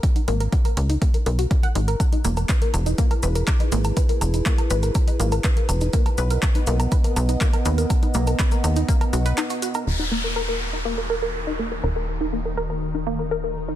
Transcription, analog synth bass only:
\new Staff \with { instrumentName = "Analog synth bass" } { \clef bass \time 4/4 \key ees \phrygian \tempo 4 = 122 r8 aes,,8 r8 des,8 r8 ces,8 r8 aes,,8 | r8 e,,8 r8 e,,8 r8 e,,8 r8 gis,,8 | r8 e,,8 r8 gis,,8 r8 gis,,8 r8 e,,8 | r8 b,,8 r8 b,,8 r8 b,,8 r8 dis,8 |
r8 b,,8 r8 dis,8 r8 b,,8 r4 | ees,,1 | ees,,1 | }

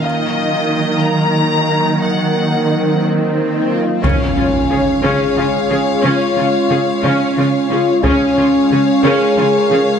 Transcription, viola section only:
\new Staff \with { instrumentName = "Viola section" } { \time 6/8 \key des \major \tempo 4. = 60 r2. | r2. | des'8 <des' f'>8 <des' aes'>8 des'8 <des' f'>8 <des' aes'>8 | des'8 <des' f'>8 <des' aes'>8 des'8 <des' f'>8 <des' aes'>8 |
des'8 <des' f'>8 <des' aes'>8 des'8 <des' f'>8 <des' aes'>8 | }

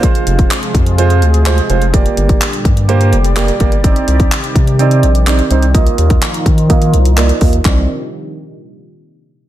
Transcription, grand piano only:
\new Staff \with { instrumentName = "Grand piano" } { \time 4/4 \key c \minor \tempo 4 = 126 << { r1 | r1 | r1 | r2. ees''4 |
r1 | } \\ { <aes f' c''>4 r4 <aes f' c''>8 r8 <aes f' c''>16 r16 <aes f' c''>16 r16 | <bes g' d''>4 r4 <bes g' c''>8 r8 <bes g' d''>16 r16 <bes g' d''>16 r16 | <c' ees' d''>4 r4 <c' ees' d''>8 r8 <c' ees' d''>16 r16 <c' ees' c''>16 r16 | <bes f' ees''>4 r4 <bes f' ees''>8 r8 <bes f' d''>16 r16 <bes f' ees''>16 r16 |
<c' ees' d''>8 r2. r8 | } >> }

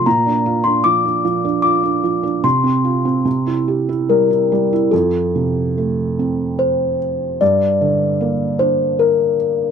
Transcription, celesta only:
\new Staff \with { instrumentName = "Celesta" } { \time 3/4 \key f \major \tempo 4 = 74 bes''8. c'''16 d'''4 d'''4 | c'''4. r8 bes'4 | a'2 c''4 | d''4. c''8 bes'4 | }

